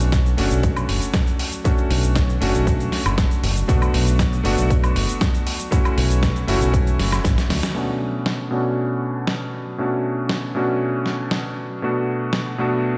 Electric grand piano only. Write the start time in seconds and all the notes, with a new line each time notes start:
Already playing: A3 C#4 D4 F#4
0.37 A3 C#4 D4 F#4
1.64 A3 C#4 D4 F#4
2.41 A3 C#4 D4 F#4
3.68 A3 B3 D4 F#4
4.44 A3 B3 D4 F#4
5.71 A3 C#4 E4 F#4
6.47 A3 C#4 E4 F#4
7.74 B2 A3 C#4 D4 F#4
8.51 B2 A3 C#4 D4 F#4
9.78 B2 A3 C#4 D4 F#4
10.55 B2 A3 C#4 D4 F#4
11.82 B2 A3 B3 D4 F#4
12.58 B2 A3 B3 D4 F#4